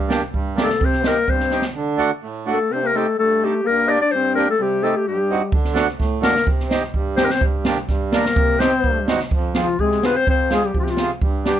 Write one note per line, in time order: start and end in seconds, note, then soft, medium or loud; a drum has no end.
0.00 0.22 G2 medium
0.08 0.22 A#3 medium
0.08 0.22 D4 medium
0.08 0.23 G4 medium
0.08 snare medium
0.33 0.69 G2 medium
0.33 kick medium
0.55 0.83 A3 medium
0.55 0.69 A#3 medium
0.55 0.69 D4 medium
0.55 0.70 G4 medium
0.55 snare medium
0.61 0.87 A4 medium
0.69 snare medium
0.81 1.16 C3 medium
0.81 1.05 C4 medium
0.81 kick medium
0.85 1.09 C5 medium
0.92 snare soft
1.03 1.30 A#3 medium
1.03 1.16 C4 medium
1.03 1.17 D#4 medium
1.03 1.17 G4 medium
1.03 snare medium
1.07 1.31 A#4 medium
1.28 1.63 G2 medium
1.28 1.64 C4 medium
1.28 1.65 C5 medium
1.28 kick medium
1.40 snare soft
1.50 1.64 C4 medium
1.50 1.64 D#4 medium
1.50 1.64 G4 medium
1.50 snare soft
1.62 snare medium
1.75 2.11 D3 medium
1.97 2.10 A3 medium
1.97 2.11 D4 medium
1.97 2.11 F#4 medium
2.23 2.58 A2 medium
2.45 2.58 A3 medium
2.45 2.55 A3 medium
2.45 2.58 D4 medium
2.45 2.59 F#4 medium
2.45 2.74 A4 medium
2.53 2.61 A#3 medium
2.60 2.73 A3 medium
2.70 3.05 C3 medium
2.70 2.77 C4 medium
2.70 2.88 C5 medium
2.75 2.82 C4 medium
2.75 2.78 D4 medium
2.83 2.93 A#3 medium
2.83 2.98 A#4 medium
2.94 3.16 A3 medium
2.94 3.06 C4 medium
2.94 3.06 D#4 medium
2.94 3.07 G4 medium
2.94 3.18 A4 medium
3.19 3.53 G2 medium
3.19 3.62 A3 medium
3.19 3.46 A4 medium
3.42 3.53 C4 medium
3.42 3.54 D#4 medium
3.42 3.68 G4 medium
3.42 3.54 A4 medium
3.64 4.01 G2 medium
3.64 3.97 A#3 medium
3.64 3.86 A#4 medium
3.87 4.00 A#3 medium
3.87 4.00 D4 medium
3.87 4.00 G4 medium
3.87 4.00 D5 medium
3.87 3.90 D#5 medium
4.00 4.11 D4 medium
4.00 4.12 D5 loud
4.11 4.47 G2 medium
4.11 4.34 C5 loud
4.15 4.47 C4 medium
4.35 4.47 A#3 medium
4.35 4.47 D4 medium
4.35 4.48 G4 medium
4.35 4.46 A#4 medium
4.49 4.58 A3 medium
4.49 4.64 A4 medium
4.59 4.94 C3 medium
4.59 4.84 G3 medium
4.59 4.85 G4 medium
4.82 5.09 A3 medium
4.82 4.94 C4 medium
4.82 4.95 D#4 medium
4.82 4.95 G4 medium
4.82 4.98 A4 medium
4.96 5.07 G4 medium
5.07 5.41 G2 medium
5.07 5.16 G3 medium
5.07 5.51 G4 medium
5.14 5.22 F#3 medium
5.20 5.53 G3 medium
5.30 5.41 C4 medium
5.30 5.42 D#4 medium
5.30 5.42 F#4 medium
5.52 5.88 D3 medium
5.52 kick medium
5.64 snare soft
5.73 5.87 A3 medium
5.73 5.87 D4 medium
5.73 5.88 F#4 medium
5.73 snare medium
5.89 snare soft
5.98 6.34 A2 medium
5.98 kick medium
5.98 snare soft
6.21 6.34 A3 medium
6.21 6.46 A#3 medium
6.21 6.35 D4 medium
6.21 6.35 F#4 medium
6.21 6.46 A#4 loud
6.21 snare medium
6.35 snare medium
6.45 6.81 C3 medium
6.45 kick medium
6.60 snare soft
6.69 6.82 C4 medium
6.69 6.82 D#4 medium
6.69 6.83 G4 medium
6.69 snare medium
6.84 snare soft
6.94 7.30 G2 medium
6.94 kick medium
7.16 7.29 C4 medium
7.16 7.30 C4 medium
7.16 7.30 D#4 medium
7.16 7.30 G4 medium
7.16 7.26 C5 medium
7.16 snare medium
7.25 7.33 A#4 medium
7.30 7.41 C4 medium
7.30 7.43 C5 loud
7.30 snare medium
7.40 7.76 G2 medium
7.40 kick medium
7.65 7.77 A#3 medium
7.65 7.78 D4 medium
7.65 7.78 G4 medium
7.65 snare medium
7.88 8.24 G2 medium
7.88 kick medium
7.88 snare soft
8.12 8.24 A#3 medium
8.12 8.57 A#3 medium
8.12 8.25 D4 medium
8.12 8.25 A#4 medium
8.12 8.61 A#4 medium
8.12 snare medium
8.25 snare medium
8.36 8.72 C3 medium
8.36 kick loud
8.58 8.71 C4 medium
8.58 9.05 C4 loud
8.58 8.72 D#4 medium
8.58 8.72 G4 medium
8.58 9.07 C5 loud
8.58 snare medium
8.84 9.19 G2 medium
8.84 kick medium
9.08 9.20 C4 medium
9.08 9.20 D#4 medium
9.08 9.20 F#4 medium
9.08 snare medium
9.19 snare medium
9.31 9.68 F2 medium
9.31 kick medium
9.55 9.78 F3 medium
9.55 9.67 C4 medium
9.55 9.81 F4 medium
9.55 9.67 F4 soft
9.55 9.68 G#4 medium
9.55 snare medium
9.79 10.15 C3 medium
9.79 10.02 G#3 medium
9.79 10.07 G#4 medium
9.79 kick soft
9.91 snare soft
10.03 10.16 B3 medium
10.03 10.15 C4 medium
10.03 10.15 F4 soft
10.03 10.16 G#4 medium
10.03 10.18 B4 medium
10.03 snare medium
10.15 10.27 C4 medium
10.15 10.28 C5 loud
10.27 10.62 F2 medium
10.27 10.53 C4 medium
10.27 10.50 C5 loud
10.27 kick medium
10.50 10.66 G#3 medium
10.50 10.62 C4 medium
10.50 10.63 F4 medium
10.50 10.63 G#4 medium
10.50 10.67 G#4 medium
10.50 snare medium
10.64 10.74 G3 medium
10.64 10.76 G4 medium
10.74 11.11 C3 medium
10.74 11.08 F3 medium
10.74 kick medium
10.80 10.85 F4 medium
10.84 10.92 G4 medium
10.84 snare soft
10.90 11.11 F4 medium
10.97 11.10 C4 medium
10.97 11.11 F4 soft
10.97 snare medium
11.01 11.12 G#4 medium
11.21 11.57 G2 medium
11.21 kick medium
11.45 11.60 G3 medium
11.45 11.57 B3 medium
11.45 11.57 D4 medium
11.45 11.60 G4 medium
11.45 11.58 G4 medium
11.45 snare medium